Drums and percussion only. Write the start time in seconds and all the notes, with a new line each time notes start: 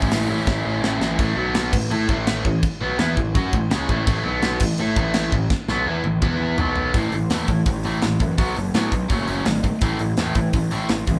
0.02 kick
0.11 snare, open hi-hat
0.47 kick, snare
0.84 snare
1.02 snare
1.19 kick, crash
1.54 snare, crash
1.73 kick, crash
1.91 crash
2.09 kick
2.27 snare, crash
2.45 kick
2.63 kick, crash
2.99 snare, crash
3.17 kick
3.35 kick, crash
3.53 kick
3.71 snare, crash
3.89 kick
4.07 kick, crash
4.42 snare, crash
4.60 kick, crash
4.78 crash
4.96 kick
5.14 snare, crash
5.32 kick
5.50 kick, snare
5.68 snare
6.04 high tom
6.22 kick, mid tom
6.58 floor tom
6.76 floor tom
6.94 kick, open hi-hat
7.12 open hi-hat
7.30 snare, open hi-hat
7.48 kick, open hi-hat
7.66 kick, open hi-hat
7.83 open hi-hat
8.02 snare, open hi-hat
8.20 kick, open hi-hat
8.38 kick, open hi-hat
8.56 open hi-hat
8.74 snare, open hi-hat
8.92 kick, open hi-hat
9.10 kick, open hi-hat
9.28 open hi-hat
9.45 snare, open hi-hat
9.64 kick, open hi-hat
9.81 kick, open hi-hat
9.99 open hi-hat
10.17 snare, open hi-hat
10.35 kick, open hi-hat
10.53 kick, open hi-hat
10.71 open hi-hat
10.89 snare, open hi-hat
11.07 kick, open hi-hat